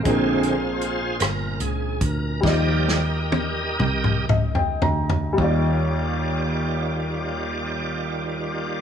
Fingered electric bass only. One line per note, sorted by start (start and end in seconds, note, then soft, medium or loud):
0.06 1.17 A#1 medium
1.21 1.57 G1 medium
1.60 1.98 C#2 medium
2.01 2.40 D2 medium
2.44 3.76 D#2 medium
3.80 4.26 C2 medium
4.30 4.78 C#2 medium
4.82 5.34 D2 medium
5.38 8.81 D#2 medium